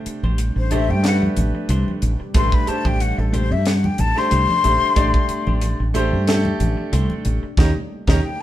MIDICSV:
0, 0, Header, 1, 9, 480
1, 0, Start_track
1, 0, Tempo, 653595
1, 1730, Time_signature, 4, 2, 24, 8
1, 6190, End_track
2, 0, Start_track
2, 0, Title_t, "Flute"
2, 0, Program_c, 0, 73
2, 428, Note_on_c, 0, 72, 76
2, 531, Note_on_c, 0, 76, 82
2, 542, Note_off_c, 0, 72, 0
2, 665, Note_on_c, 0, 79, 90
2, 676, Note_off_c, 0, 76, 0
2, 772, Note_off_c, 0, 79, 0
2, 788, Note_on_c, 0, 78, 83
2, 926, Note_off_c, 0, 78, 0
2, 1741, Note_on_c, 0, 84, 86
2, 1865, Note_on_c, 0, 83, 82
2, 1876, Note_off_c, 0, 84, 0
2, 1972, Note_on_c, 0, 81, 87
2, 1983, Note_off_c, 0, 83, 0
2, 2106, Note_on_c, 0, 79, 85
2, 2117, Note_off_c, 0, 81, 0
2, 2213, Note_on_c, 0, 78, 76
2, 2224, Note_off_c, 0, 79, 0
2, 2345, Note_on_c, 0, 69, 66
2, 2356, Note_off_c, 0, 78, 0
2, 2458, Note_on_c, 0, 72, 92
2, 2469, Note_off_c, 0, 69, 0
2, 2585, Note_on_c, 0, 76, 82
2, 2596, Note_off_c, 0, 72, 0
2, 2695, Note_on_c, 0, 78, 75
2, 2706, Note_off_c, 0, 76, 0
2, 2832, Note_on_c, 0, 79, 83
2, 2843, Note_off_c, 0, 78, 0
2, 2939, Note_on_c, 0, 81, 93
2, 2950, Note_off_c, 0, 79, 0
2, 3070, Note_on_c, 0, 84, 98
2, 3081, Note_off_c, 0, 81, 0
2, 4265, Note_off_c, 0, 84, 0
2, 6044, Note_on_c, 0, 79, 75
2, 6186, Note_off_c, 0, 79, 0
2, 6190, End_track
3, 0, Start_track
3, 0, Title_t, "Clean electric guitar"
3, 0, Program_c, 1, 27
3, 176, Note_on_c, 1, 72, 64
3, 181, Note_on_c, 1, 67, 51
3, 184, Note_on_c, 1, 62, 48
3, 277, Note_off_c, 1, 67, 0
3, 279, Note_off_c, 1, 62, 0
3, 280, Note_off_c, 1, 72, 0
3, 525, Note_on_c, 1, 57, 72
3, 528, Note_on_c, 1, 62, 79
3, 532, Note_on_c, 1, 67, 83
3, 533, Note_on_c, 1, 72, 85
3, 644, Note_off_c, 1, 72, 0
3, 647, Note_off_c, 1, 67, 0
3, 648, Note_off_c, 1, 62, 0
3, 656, Note_off_c, 1, 57, 0
3, 1245, Note_on_c, 1, 57, 85
3, 1247, Note_on_c, 1, 62, 87
3, 1249, Note_on_c, 1, 67, 86
3, 1250, Note_on_c, 1, 72, 100
3, 1399, Note_off_c, 1, 57, 0
3, 1400, Note_off_c, 1, 62, 0
3, 1400, Note_off_c, 1, 67, 0
3, 1401, Note_off_c, 1, 72, 0
3, 1721, Note_on_c, 1, 57, 76
3, 1725, Note_on_c, 1, 62, 75
3, 1729, Note_on_c, 1, 67, 76
3, 1730, Note_on_c, 1, 72, 85
3, 1877, Note_off_c, 1, 57, 0
3, 1879, Note_off_c, 1, 62, 0
3, 1881, Note_off_c, 1, 67, 0
3, 1881, Note_off_c, 1, 72, 0
3, 2090, Note_on_c, 1, 72, 54
3, 2096, Note_on_c, 1, 67, 50
3, 2099, Note_on_c, 1, 62, 41
3, 2197, Note_off_c, 1, 62, 0
3, 2199, Note_off_c, 1, 67, 0
3, 2199, Note_off_c, 1, 72, 0
3, 2444, Note_on_c, 1, 57, 86
3, 2447, Note_on_c, 1, 62, 81
3, 2448, Note_on_c, 1, 67, 87
3, 2453, Note_on_c, 1, 72, 85
3, 2565, Note_off_c, 1, 72, 0
3, 2567, Note_off_c, 1, 67, 0
3, 2570, Note_off_c, 1, 62, 0
3, 2576, Note_off_c, 1, 57, 0
3, 3165, Note_on_c, 1, 57, 75
3, 3169, Note_on_c, 1, 62, 83
3, 3170, Note_on_c, 1, 67, 88
3, 3172, Note_on_c, 1, 72, 78
3, 3319, Note_off_c, 1, 57, 0
3, 3321, Note_off_c, 1, 62, 0
3, 3322, Note_off_c, 1, 67, 0
3, 3322, Note_off_c, 1, 72, 0
3, 3644, Note_on_c, 1, 57, 86
3, 3648, Note_on_c, 1, 62, 91
3, 3650, Note_on_c, 1, 67, 91
3, 3651, Note_on_c, 1, 72, 103
3, 3799, Note_off_c, 1, 57, 0
3, 3801, Note_off_c, 1, 62, 0
3, 3802, Note_off_c, 1, 67, 0
3, 3802, Note_off_c, 1, 72, 0
3, 4017, Note_on_c, 1, 72, 56
3, 4021, Note_on_c, 1, 67, 57
3, 4025, Note_on_c, 1, 62, 48
3, 4120, Note_off_c, 1, 67, 0
3, 4121, Note_off_c, 1, 62, 0
3, 4123, Note_off_c, 1, 72, 0
3, 4366, Note_on_c, 1, 57, 80
3, 4369, Note_on_c, 1, 62, 95
3, 4372, Note_on_c, 1, 67, 98
3, 4373, Note_on_c, 1, 72, 94
3, 4489, Note_off_c, 1, 72, 0
3, 4491, Note_off_c, 1, 67, 0
3, 4493, Note_off_c, 1, 62, 0
3, 4497, Note_off_c, 1, 57, 0
3, 5087, Note_on_c, 1, 57, 91
3, 5087, Note_on_c, 1, 62, 85
3, 5089, Note_on_c, 1, 67, 97
3, 5091, Note_on_c, 1, 72, 93
3, 5240, Note_off_c, 1, 57, 0
3, 5240, Note_off_c, 1, 62, 0
3, 5241, Note_off_c, 1, 67, 0
3, 5242, Note_off_c, 1, 72, 0
3, 5566, Note_on_c, 1, 63, 83
3, 5569, Note_on_c, 1, 67, 87
3, 5573, Note_on_c, 1, 70, 83
3, 5651, Note_off_c, 1, 63, 0
3, 5651, Note_off_c, 1, 67, 0
3, 5652, Note_off_c, 1, 70, 0
3, 5934, Note_on_c, 1, 70, 107
3, 5937, Note_on_c, 1, 67, 93
3, 5941, Note_on_c, 1, 63, 81
3, 6007, Note_off_c, 1, 67, 0
3, 6008, Note_off_c, 1, 63, 0
3, 6008, Note_off_c, 1, 70, 0
3, 6190, End_track
4, 0, Start_track
4, 0, Title_t, "Grand piano"
4, 0, Program_c, 2, 0
4, 0, Note_on_c, 2, 57, 71
4, 0, Note_on_c, 2, 62, 65
4, 0, Note_on_c, 2, 67, 66
4, 0, Note_on_c, 2, 72, 78
4, 402, Note_off_c, 2, 57, 0
4, 406, Note_off_c, 2, 62, 0
4, 408, Note_off_c, 2, 67, 0
4, 410, Note_off_c, 2, 72, 0
4, 519, Note_on_c, 2, 57, 78
4, 525, Note_on_c, 2, 62, 67
4, 528, Note_on_c, 2, 67, 70
4, 534, Note_on_c, 2, 72, 78
4, 733, Note_off_c, 2, 57, 0
4, 736, Note_off_c, 2, 62, 0
4, 738, Note_off_c, 2, 67, 0
4, 741, Note_off_c, 2, 72, 0
4, 755, Note_on_c, 2, 57, 73
4, 757, Note_on_c, 2, 62, 72
4, 761, Note_on_c, 2, 67, 69
4, 766, Note_on_c, 2, 71, 80
4, 1600, Note_off_c, 2, 57, 0
4, 1601, Note_off_c, 2, 62, 0
4, 1603, Note_off_c, 2, 67, 0
4, 1606, Note_off_c, 2, 71, 0
4, 1721, Note_on_c, 2, 57, 69
4, 1721, Note_on_c, 2, 62, 66
4, 1728, Note_on_c, 2, 67, 68
4, 1735, Note_on_c, 2, 71, 81
4, 1935, Note_off_c, 2, 57, 0
4, 1935, Note_off_c, 2, 62, 0
4, 1939, Note_off_c, 2, 67, 0
4, 1942, Note_off_c, 2, 71, 0
4, 1955, Note_on_c, 2, 57, 66
4, 1965, Note_on_c, 2, 62, 63
4, 1965, Note_on_c, 2, 67, 66
4, 1971, Note_on_c, 2, 72, 72
4, 2800, Note_off_c, 2, 57, 0
4, 2805, Note_off_c, 2, 62, 0
4, 2805, Note_off_c, 2, 67, 0
4, 2808, Note_off_c, 2, 72, 0
4, 3053, Note_on_c, 2, 57, 76
4, 3055, Note_on_c, 2, 62, 69
4, 3060, Note_on_c, 2, 67, 66
4, 3066, Note_on_c, 2, 72, 88
4, 3362, Note_off_c, 2, 57, 0
4, 3363, Note_off_c, 2, 62, 0
4, 3365, Note_off_c, 2, 67, 0
4, 3368, Note_off_c, 2, 72, 0
4, 3403, Note_on_c, 2, 57, 79
4, 3408, Note_on_c, 2, 62, 69
4, 3414, Note_on_c, 2, 67, 75
4, 3418, Note_on_c, 2, 72, 83
4, 3616, Note_off_c, 2, 57, 0
4, 3619, Note_off_c, 2, 62, 0
4, 3622, Note_off_c, 2, 67, 0
4, 3624, Note_off_c, 2, 72, 0
4, 3636, Note_on_c, 2, 57, 81
4, 3642, Note_on_c, 2, 62, 76
4, 3649, Note_on_c, 2, 74, 88
4, 3650, Note_on_c, 2, 67, 70
4, 4273, Note_off_c, 2, 57, 0
4, 4275, Note_off_c, 2, 62, 0
4, 4279, Note_off_c, 2, 67, 0
4, 4279, Note_off_c, 2, 74, 0
4, 4362, Note_on_c, 2, 57, 92
4, 4366, Note_on_c, 2, 62, 81
4, 4373, Note_on_c, 2, 67, 93
4, 4377, Note_on_c, 2, 72, 106
4, 4576, Note_off_c, 2, 57, 0
4, 4578, Note_off_c, 2, 62, 0
4, 4581, Note_off_c, 2, 67, 0
4, 4583, Note_off_c, 2, 72, 0
4, 4606, Note_on_c, 2, 57, 96
4, 4612, Note_on_c, 2, 62, 85
4, 4616, Note_on_c, 2, 67, 86
4, 4620, Note_on_c, 2, 69, 107
4, 5445, Note_off_c, 2, 57, 0
4, 5448, Note_off_c, 2, 62, 0
4, 5450, Note_off_c, 2, 67, 0
4, 5452, Note_off_c, 2, 69, 0
4, 5565, Note_on_c, 2, 67, 89
4, 5566, Note_on_c, 2, 61, 96
4, 5568, Note_on_c, 2, 63, 94
4, 5649, Note_off_c, 2, 67, 0
4, 5650, Note_off_c, 2, 61, 0
4, 5651, Note_off_c, 2, 63, 0
4, 5939, Note_on_c, 2, 61, 98
4, 5939, Note_on_c, 2, 63, 97
4, 5940, Note_on_c, 2, 67, 97
4, 6009, Note_off_c, 2, 61, 0
4, 6010, Note_off_c, 2, 63, 0
4, 6010, Note_off_c, 2, 67, 0
4, 6190, End_track
5, 0, Start_track
5, 0, Title_t, "Ambient pad"
5, 0, Program_c, 3, 92
5, 0, Note_on_c, 3, 48, 80
5, 0, Note_on_c, 3, 55, 70
5, 0, Note_on_c, 3, 57, 74
5, 0, Note_on_c, 3, 62, 62
5, 0, Note_on_c, 3, 67, 79
5, 5536, Note_off_c, 3, 62, 0
5, 5537, Note_off_c, 3, 48, 0
5, 5544, Note_off_c, 3, 57, 0
5, 5573, Note_on_c, 3, 49, 77
5, 5574, Note_on_c, 3, 58, 72
5, 5577, Note_on_c, 3, 63, 74
5, 6190, Note_off_c, 3, 49, 0
5, 6190, Note_off_c, 3, 55, 0
5, 6190, Note_off_c, 3, 58, 0
5, 6190, Note_off_c, 3, 63, 0
5, 6190, Note_off_c, 3, 67, 0
5, 6190, End_track
6, 0, Start_track
6, 0, Title_t, "Fretless electric bass"
6, 0, Program_c, 4, 35
6, 169, Note_on_c, 4, 33, 74
6, 361, Note_off_c, 4, 33, 0
6, 412, Note_on_c, 4, 33, 80
6, 651, Note_on_c, 4, 43, 76
6, 662, Note_off_c, 4, 33, 0
6, 929, Note_off_c, 4, 43, 0
6, 1005, Note_on_c, 4, 33, 84
6, 1108, Note_off_c, 4, 33, 0
6, 1241, Note_on_c, 4, 36, 82
6, 1346, Note_off_c, 4, 36, 0
6, 1487, Note_on_c, 4, 33, 81
6, 1589, Note_off_c, 4, 33, 0
6, 1724, Note_on_c, 4, 33, 94
6, 1828, Note_off_c, 4, 33, 0
6, 2096, Note_on_c, 4, 33, 73
6, 2286, Note_off_c, 4, 33, 0
6, 2336, Note_on_c, 4, 33, 82
6, 2575, Note_on_c, 4, 43, 81
6, 2586, Note_off_c, 4, 33, 0
6, 2852, Note_off_c, 4, 43, 0
6, 2931, Note_on_c, 4, 33, 96
6, 3032, Note_off_c, 4, 33, 0
6, 3172, Note_on_c, 4, 36, 88
6, 3273, Note_off_c, 4, 36, 0
6, 3414, Note_on_c, 4, 33, 90
6, 3514, Note_off_c, 4, 33, 0
6, 3647, Note_on_c, 4, 33, 96
6, 3750, Note_off_c, 4, 33, 0
6, 4018, Note_on_c, 4, 33, 78
6, 4207, Note_off_c, 4, 33, 0
6, 4259, Note_on_c, 4, 33, 81
6, 4496, Note_on_c, 4, 43, 82
6, 4507, Note_off_c, 4, 33, 0
6, 4772, Note_off_c, 4, 43, 0
6, 4850, Note_on_c, 4, 33, 101
6, 4951, Note_off_c, 4, 33, 0
6, 5088, Note_on_c, 4, 36, 90
6, 5190, Note_off_c, 4, 36, 0
6, 5328, Note_on_c, 4, 33, 89
6, 5430, Note_off_c, 4, 33, 0
6, 5564, Note_on_c, 4, 39, 94
6, 5663, Note_off_c, 4, 39, 0
6, 5930, Note_on_c, 4, 39, 82
6, 6016, Note_off_c, 4, 39, 0
6, 6190, End_track
7, 0, Start_track
7, 0, Title_t, "Muted clean electric guitar strokes"
7, 46, Note_on_c, 9, 29, 42
7, 120, Note_off_c, 9, 29, 0
7, 284, Note_on_c, 9, 29, 41
7, 357, Note_off_c, 9, 29, 0
7, 411, Note_on_c, 9, 29, 40
7, 485, Note_off_c, 9, 29, 0
7, 653, Note_on_c, 9, 29, 36
7, 726, Note_off_c, 9, 29, 0
7, 895, Note_on_c, 9, 29, 40
7, 969, Note_off_c, 9, 29, 0
7, 1136, Note_on_c, 9, 29, 46
7, 1210, Note_off_c, 9, 29, 0
7, 1484, Note_on_c, 9, 29, 43
7, 1557, Note_off_c, 9, 29, 0
7, 1615, Note_on_c, 9, 29, 43
7, 1689, Note_off_c, 9, 29, 0
7, 1966, Note_on_c, 9, 29, 37
7, 2040, Note_off_c, 9, 29, 0
7, 2205, Note_on_c, 9, 29, 41
7, 2278, Note_off_c, 9, 29, 0
7, 2333, Note_on_c, 9, 29, 35
7, 2406, Note_off_c, 9, 29, 0
7, 2574, Note_on_c, 9, 29, 41
7, 2647, Note_off_c, 9, 29, 0
7, 2815, Note_on_c, 9, 29, 43
7, 2889, Note_off_c, 9, 29, 0
7, 3055, Note_on_c, 9, 29, 43
7, 3128, Note_off_c, 9, 29, 0
7, 3404, Note_on_c, 9, 29, 34
7, 3477, Note_off_c, 9, 29, 0
7, 3536, Note_on_c, 9, 29, 42
7, 3609, Note_off_c, 9, 29, 0
7, 3885, Note_on_c, 9, 29, 42
7, 3959, Note_off_c, 9, 29, 0
7, 4126, Note_on_c, 9, 29, 41
7, 4200, Note_off_c, 9, 29, 0
7, 4261, Note_on_c, 9, 29, 46
7, 4334, Note_off_c, 9, 29, 0
7, 4498, Note_on_c, 9, 29, 48
7, 4571, Note_off_c, 9, 29, 0
7, 4736, Note_on_c, 9, 29, 53
7, 4809, Note_off_c, 9, 29, 0
7, 4974, Note_on_c, 9, 29, 48
7, 5047, Note_off_c, 9, 29, 0
7, 5330, Note_on_c, 9, 29, 42
7, 5403, Note_off_c, 9, 29, 0
7, 5456, Note_on_c, 9, 29, 48
7, 5530, Note_off_c, 9, 29, 0
7, 6190, End_track
8, 0, Start_track
8, 0, Title_t, "Muted fretless electric bass strokes"
8, 46, Note_on_c, 9, 29, 33
8, 119, Note_off_c, 9, 29, 0
8, 1974, Note_on_c, 9, 29, 36
8, 2047, Note_off_c, 9, 29, 0
8, 3303, Note_on_c, 9, 29, 37
8, 3377, Note_off_c, 9, 29, 0
8, 3889, Note_on_c, 9, 29, 34
8, 3962, Note_off_c, 9, 29, 0
8, 5460, Note_on_c, 9, 29, 36
8, 5533, Note_off_c, 9, 29, 0
8, 6190, End_track
9, 0, Start_track
9, 0, Title_t, "Drums"
9, 44, Note_on_c, 9, 42, 64
9, 118, Note_off_c, 9, 42, 0
9, 174, Note_on_c, 9, 63, 69
9, 247, Note_off_c, 9, 63, 0
9, 281, Note_on_c, 9, 42, 85
9, 354, Note_off_c, 9, 42, 0
9, 520, Note_on_c, 9, 42, 59
9, 525, Note_on_c, 9, 64, 65
9, 593, Note_off_c, 9, 42, 0
9, 598, Note_off_c, 9, 64, 0
9, 762, Note_on_c, 9, 42, 78
9, 770, Note_on_c, 9, 38, 99
9, 835, Note_off_c, 9, 42, 0
9, 843, Note_off_c, 9, 38, 0
9, 895, Note_on_c, 9, 63, 74
9, 969, Note_off_c, 9, 63, 0
9, 1003, Note_on_c, 9, 42, 63
9, 1011, Note_on_c, 9, 63, 72
9, 1011, Note_on_c, 9, 64, 60
9, 1076, Note_off_c, 9, 42, 0
9, 1085, Note_off_c, 9, 63, 0
9, 1085, Note_off_c, 9, 64, 0
9, 1240, Note_on_c, 9, 42, 73
9, 1314, Note_off_c, 9, 42, 0
9, 1381, Note_on_c, 9, 63, 59
9, 1455, Note_off_c, 9, 63, 0
9, 1484, Note_on_c, 9, 42, 61
9, 1491, Note_on_c, 9, 64, 62
9, 1557, Note_off_c, 9, 42, 0
9, 1564, Note_off_c, 9, 64, 0
9, 1722, Note_on_c, 9, 42, 79
9, 1723, Note_on_c, 9, 36, 104
9, 1795, Note_off_c, 9, 42, 0
9, 1796, Note_off_c, 9, 36, 0
9, 1853, Note_on_c, 9, 36, 87
9, 1926, Note_off_c, 9, 36, 0
9, 1964, Note_on_c, 9, 42, 62
9, 2037, Note_off_c, 9, 42, 0
9, 2093, Note_on_c, 9, 36, 71
9, 2103, Note_on_c, 9, 63, 64
9, 2167, Note_off_c, 9, 36, 0
9, 2176, Note_off_c, 9, 63, 0
9, 2206, Note_on_c, 9, 42, 76
9, 2279, Note_off_c, 9, 42, 0
9, 2451, Note_on_c, 9, 42, 59
9, 2454, Note_on_c, 9, 64, 66
9, 2524, Note_off_c, 9, 42, 0
9, 2528, Note_off_c, 9, 64, 0
9, 2685, Note_on_c, 9, 42, 75
9, 2693, Note_on_c, 9, 38, 95
9, 2758, Note_off_c, 9, 42, 0
9, 2766, Note_off_c, 9, 38, 0
9, 2821, Note_on_c, 9, 63, 76
9, 2895, Note_off_c, 9, 63, 0
9, 2925, Note_on_c, 9, 42, 60
9, 2929, Note_on_c, 9, 63, 71
9, 2929, Note_on_c, 9, 64, 64
9, 2998, Note_off_c, 9, 42, 0
9, 3003, Note_off_c, 9, 63, 0
9, 3003, Note_off_c, 9, 64, 0
9, 3065, Note_on_c, 9, 38, 30
9, 3138, Note_off_c, 9, 38, 0
9, 3166, Note_on_c, 9, 42, 74
9, 3240, Note_off_c, 9, 42, 0
9, 3296, Note_on_c, 9, 63, 70
9, 3369, Note_off_c, 9, 63, 0
9, 3408, Note_on_c, 9, 42, 63
9, 3408, Note_on_c, 9, 64, 76
9, 3481, Note_off_c, 9, 42, 0
9, 3481, Note_off_c, 9, 64, 0
9, 3644, Note_on_c, 9, 42, 82
9, 3646, Note_on_c, 9, 36, 100
9, 3718, Note_off_c, 9, 42, 0
9, 3719, Note_off_c, 9, 36, 0
9, 3774, Note_on_c, 9, 36, 88
9, 3848, Note_off_c, 9, 36, 0
9, 3883, Note_on_c, 9, 42, 66
9, 3957, Note_off_c, 9, 42, 0
9, 4016, Note_on_c, 9, 63, 78
9, 4089, Note_off_c, 9, 63, 0
9, 4123, Note_on_c, 9, 42, 85
9, 4197, Note_off_c, 9, 42, 0
9, 4364, Note_on_c, 9, 64, 66
9, 4369, Note_on_c, 9, 42, 67
9, 4437, Note_off_c, 9, 64, 0
9, 4442, Note_off_c, 9, 42, 0
9, 4609, Note_on_c, 9, 42, 79
9, 4617, Note_on_c, 9, 38, 109
9, 4682, Note_off_c, 9, 42, 0
9, 4690, Note_off_c, 9, 38, 0
9, 4737, Note_on_c, 9, 63, 73
9, 4810, Note_off_c, 9, 63, 0
9, 4848, Note_on_c, 9, 42, 65
9, 4848, Note_on_c, 9, 63, 67
9, 4848, Note_on_c, 9, 64, 59
9, 4922, Note_off_c, 9, 42, 0
9, 4922, Note_off_c, 9, 63, 0
9, 4922, Note_off_c, 9, 64, 0
9, 5088, Note_on_c, 9, 42, 75
9, 5162, Note_off_c, 9, 42, 0
9, 5212, Note_on_c, 9, 63, 58
9, 5286, Note_off_c, 9, 63, 0
9, 5323, Note_on_c, 9, 42, 62
9, 5326, Note_on_c, 9, 64, 67
9, 5396, Note_off_c, 9, 42, 0
9, 5399, Note_off_c, 9, 64, 0
9, 5562, Note_on_c, 9, 36, 98
9, 5563, Note_on_c, 9, 64, 96
9, 5571, Note_on_c, 9, 38, 99
9, 5635, Note_off_c, 9, 36, 0
9, 5637, Note_off_c, 9, 64, 0
9, 5645, Note_off_c, 9, 38, 0
9, 5929, Note_on_c, 9, 64, 94
9, 5931, Note_on_c, 9, 36, 84
9, 5936, Note_on_c, 9, 38, 96
9, 6002, Note_off_c, 9, 64, 0
9, 6004, Note_off_c, 9, 36, 0
9, 6010, Note_off_c, 9, 38, 0
9, 6190, End_track
0, 0, End_of_file